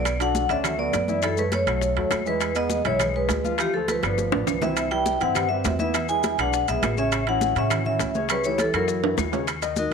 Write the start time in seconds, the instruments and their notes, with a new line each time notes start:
Already playing: upright bass B1, trombone B3, vibraphone D5
0.05 high bongo, high conga, high timbale, claves, maracas
0.20 grand piano F#3 F#4 A4, trombone D4, vibraphone F#5, high bongo, high conga, high timbale, maracas
0.35 high bongo, high conga, maracas
0.49 upright bass D2, grand piano D3 D4 D5, trombone C#4, vibraphone E5, high bongo, high conga, high timbale, maracas
0.64 grand piano F#3 F#4 A4, high bongo, high conga, low conga, high timbale, claves, maracas
0.78 grand piano F#3 F#4 A4, trombone B3, vibraphone D5, high bongo, high conga
0.93 upright bass F#2, high bongo, low bongo, high conga, high timbale, maracas
1.08 grand piano E3 E4 E5, high conga, maracas
1.22 grand piano E3 E4 E5, trombone F#3, vibraphone A4, high bongo, high timbale, claves, maracas
1.37 trombone G#3, grand piano A3 A4 C#5, vibraphone B4, high bongo, high conga, maracas
1.52 trombone A3, vibraphone C#5, high bongo, high conga, high timbale, maracas
1.67 upright bass B1, grand piano F#3 F#4 A4, high bongo, high conga, high timbale, claves, maracas
1.81 high bongo, high conga, maracas
1.96 upright bass D#2, grand piano F#3 F#4 A4, high bongo, high conga, high timbale
2.10 upright bass E2, high bongo, low bongo, high conga, high timbale, claves, maracas
2.26 grand piano E3 E4 E5, trombone G#3, vibraphone B4, maracas
2.40 high bongo, high conga, high timbale, claves, maracas
2.55 grand piano G#3 G#4 B4, trombone B3, vibraphone D#5, high bongo, high conga, high timbale, maracas
2.70 high bongo, high conga, maracas
2.85 upright bass B1, grand piano E3 E4 E5, trombone G#3, vibraphone C#5, high bongo, high conga, high timbale, maracas
2.99 grand piano G#3 G#4 B4, high bongo, high conga, low conga, high timbale, claves, maracas
3.14 trombone G#3, grand piano G#3 G#4 B4, vibraphone B4, high bongo, high conga
3.29 upright bass D2, high bongo, low bongo, high conga, high timbale, low timbale, maracas
3.44 grand piano F3 F4 F5, high conga, maracas
3.58 trombone E3, grand piano F3 F4 F5, vibraphone G4, high bongo, high conga, high timbale, claves, maracas
3.73 trombone F3, grand piano A3 A4 C5, vibraphone A4, high bongo, high conga
3.88 trombone F3, vibraphone B4, high bongo, high conga, high timbale, maracas
4.03 upright bass G1, grand piano B3 B4 D5, high bongo, high conga, high timbale, claves, maracas
4.18 high bongo, high conga, maracas
4.32 upright bass A1, grand piano B3 B4 D5, low bongo, high conga, high timbale
4.47 upright bass C2, low bongo, low conga, high timbale, claves, maracas
4.62 grand piano E3 E4 E5, trombone C4, vibraphone E5, low bongo, low conga, low timbale, maracas
4.76 high bongo, high conga, high timbale, claves, maracas
4.91 grand piano G3 G4 B4, trombone E4, vibraphone G5, high bongo, high conga, high timbale
5.06 high bongo, high conga, maracas
5.20 upright bass G2, grand piano E3 E4 E5, trombone C4, vibraphone F#5, high bongo, high conga, high timbale, maracas
5.35 grand piano G3 G4 B4, high bongo, high conga, low conga, high timbale, claves, maracas
5.49 grand piano G3 G4 B4, trombone C4, vibraphone E5, high bongo, high conga
5.64 upright bass E2, high bongo, low bongo, high conga, high timbale, low timbale, maracas
5.79 grand piano E3 E4 E5, trombone B3, vibraphone E5, high conga, maracas
5.94 grand piano E3 E4 E5, high bongo, high conga, high timbale, claves, maracas
6.09 grand piano G#3 G#4 B4, trombone E4, vibraphone G#5, high bongo, high conga, maracas
6.23 high bongo, high conga, high timbale, maracas
6.38 upright bass B1, grand piano G#3 G#4 B4, trombone D4, vibraphone F#5, high bongo, high conga, high timbale, claves, maracas
6.53 high bongo, high conga, maracas
6.68 upright bass B1, grand piano G#3 G#4 B4, trombone B3, vibraphone E5, high bongo, high conga, high timbale, maracas
6.82 upright bass A1, high bongo, low bongo, high conga, high timbale, low timbale, claves, maracas
6.97 grand piano C#3 C#4 C#5, trombone C#4, vibraphone E5, maracas
7.12 high bongo, high conga, high timbale, claves, maracas
7.27 grand piano E3 E4 F#4, trombone C#4, vibraphone F#5, high bongo, high conga, high timbale
7.41 high bongo, high conga, maracas
7.55 upright bass A2, grand piano C#3 C#4 C#5, trombone C#4, vibraphone E5, high bongo, high conga, high timbale, maracas
7.70 grand piano E3 E4 F#4, high bongo, high conga, low conga, high timbale, claves, maracas
7.85 grand piano E3 E4 F#4, trombone C#4, vibraphone E5, high bongo, high conga, low conga
7.99 upright bass C#2, high bongo, low bongo, high conga, high timbale, maracas
8.15 grand piano C#3 C#4 C#5, high conga, maracas
8.29 grand piano C#3 C#4 C#5, trombone G3, vibraphone B4, high bongo, high conga, high timbale, claves, maracas
8.44 grand piano E3 E4 G4, trombone A3, vibraphone C#5, high bongo, high conga, maracas
8.58 trombone E3, vibraphone A4, high bongo, high conga, high timbale, maracas
8.73 upright bass F#2, grand piano E3 E4 F#4, trombone F#3, vibraphone A#4, high bongo, high conga, high timbale, claves, maracas
8.88 high bongo, high conga, maracas
9.03 grand piano E3 E4 F#4, high bongo, high conga, high timbale
9.17 upright bass D#2, high bongo, low bongo, high conga, low timbale, claves, maracas
9.32 grand piano C#3 C#4 C#5, low timbale, maracas
9.47 high bongo, high conga, high timbale, claves, maracas
9.62 grand piano D#3 D#4 D#5, high bongo, high conga, high timbale, maracas
9.76 vibraphone D#4 F#4 A#4 D#5, high bongo, high conga, maracas